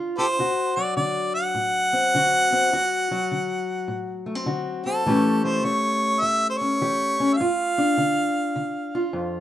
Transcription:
Already playing: D3 D4 F4
0.18 F4 G4 A4 C5
0.39 D2 F#4
0.76 F#3 D5
0.97 D3 D5
1.35 F#5
1.55 A2
1.93 C4
2.15 D3 F#4
2.52 C4
2.73 D2 F#4
3.11 F#3
3.31 D3
3.88 A2
4.26 A3
4.35 C4
4.46 D3 F#4
4.86 C4 A4
5.06 A2 E3 A3 C#4 G4
5.44 A3 C5
5.64 E3 C#5
6.21 E2 E5
6.50 C5
6.58 C#4 C#5
6.81 E3 G4
7.20 C#4
7.33 E5 F5
7.40 G2 F4
7.78 D4
7.98 D3
8.56 D3
8.95 F4
9.13 F2

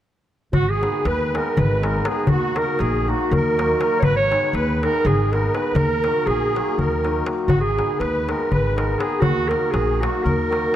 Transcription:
0.53 G#1 F#4, darbuka dum
0.70 G#4
0.81 D#3 G#3 B3 D#4, darbuka tek
1.05 D#2 B4, darbuka tek
1.34 D#3 G#3 B3 D#4 A#4, darbuka tek
1.46 darbuka tek
1.57 G#1 B4, darbuka dum
1.83 D#3 G#3 B3 D#4 A#4, darbuka tek
2.05 D#3 G#3 B3 D#4 G#4, darbuka tek
2.27 D#2 F#4, darbuka dum
2.56 D#3 F#3 A#3 D#4 A#4, darbuka tek
2.79 A#1 G#4, darbuka tek
2.95 darbuka tek
3.07 D#3 F#3 A#3 D#4 F#4
3.21 darbuka tek
3.31 D#2 A#4, darbuka dum
3.58 D#3 F#3 A#3 D#4, darbuka tek
3.78 D#3 F#3 A#3 D#4, darbuka tek
3.99 G#1 B4 C#5, darbuka dum
4.04 B4
4.16 C#5
4.31 D#3 G#3 B3 D#4, darbuka tek
4.53 D#2 B4, darbuka tek
4.70 darbuka tek
4.83 D#3 G#3 B3 D#4 A#4, darbuka tek
4.95 darbuka tek
5.05 G#1 G#4, darbuka dum
5.32 D#3 G#3 B3 D#4 A#4, darbuka tek
5.54 D#3 G#3 B3 D#4 B4, darbuka tek
5.74 D#2 A#4, darbuka dum
6.04 D#3 F#3 A#3 D#4, darbuka tek
6.26 A#1 G#4, darbuka tek
6.55 D#3 F#3 A#3 D#4, darbuka tek
6.69 darbuka tek
6.78 D#2 A#4, darbuka dum
6.92 darbuka tek
7.04 D#3 F#3 A#3 D#4, darbuka tek
7.16 darbuka tek
7.26 D#3 F#3 A#3 D#4, darbuka tek
7.38 darbuka tek
7.48 G#1 F#4, darbuka dum
7.60 G#4
7.77 D#3 G#3 B3 D#4, darbuka tek
7.99 D#2 B4, darbuka tek
8.15 darbuka tek
8.28 D#3 G#3 B3 D#4 A#4, darbuka tek
8.40 darbuka tek
8.51 G#1 B4, darbuka dum
8.76 D#3 G#3 B3 D#4 A#4, darbuka tek
8.98 D#3 G#3 B3 D#4 G#4, darbuka tek
9.20 D#2 F#4, darbuka dum
9.48 D#3 F#3 A#3 D#4 A#4, darbuka tek
9.71 A#1 G#4, darbuka tek
9.88 darbuka tek
10.01 D#3 F#3 A#3 D#4 F#4, darbuka tek
10.15 darbuka tek
10.23 D#2 A#4, darbuka dum
10.50 D#3 F#3 A#3 D#4, darbuka tek
10.71 D#3 F#3 A#3

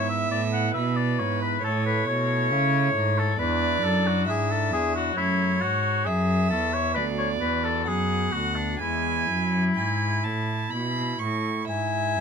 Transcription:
Already playing: G#2 B3 E4 E5
0.09 E5
0.31 A2 D5
0.53 F#5
0.74 B2 B4 E5
0.96 D5
1.19 G#2 C#5
1.42 B4
1.60 A2 A3 E4 C#5
1.64 A2 A4
1.86 B4
2.07 B2 C#5
2.51 C#3
2.95 G#2
3.18 A4
3.35 E2 G#3 D4 E4 B4 D5
3.40 E2
3.83 F#2 A4
4.06 F#4
4.27 G#2 G#4 E5
4.51 A4
4.71 E2 G#4
4.96 F#4
5.12 F#2 A3 C#4 C#5
5.17 F#2 E4
5.61 G#2 F#4
6.05 F#2 G#4 E5
6.50 E2 A4
6.73 C#5
6.93 D2 B3 F#4 B4 D5
7.18 C#5
7.41 E2 B4
7.64 A4
7.87 F#2 G#4 F#5
8.32 D2 F#4
8.56 D4
8.77 G#3 B3 E4 G#5
8.81 E2
9.29 F#2
9.75 G#2 G#5
10.23 A2 A5
10.70 B2 B5
11.19 A2 C#6
11.68 G#2 E5 G#5
12.16 F#2

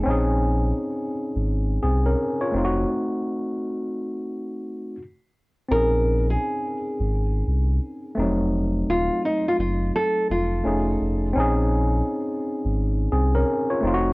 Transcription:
0.04 A#1 C4 C#4
0.08 D#4 G#4
1.36 G#1
1.83 C2 C4 G#4
2.06 C#4 A#4
2.41 F4 C#5
2.51 F1 A3 C4
2.56 D#4 F4
2.64 F#4
5.69 A#1 C4 C#4 A#4
5.73 D#4 G#4
6.30 G#4
7.00 G#1
7.47 C2
8.15 F1 A3 C4
8.20 F#3 D#4
8.88 D#1 F4
9.25 D#4
9.48 F4
9.59 F#1 F4
9.96 A4
10.30 F1 F4
10.64 F1 A3 C#4 D#4 G#4
11.01 F1
11.33 A#1 C4 C#4
11.38 D#4 G#4
12.65 G#1
13.12 C2 C4 G#4
13.35 C#4 A#4
13.70 F4 C#5
13.81 F1 A3 C4
13.85 D#4 F4
13.94 F#4

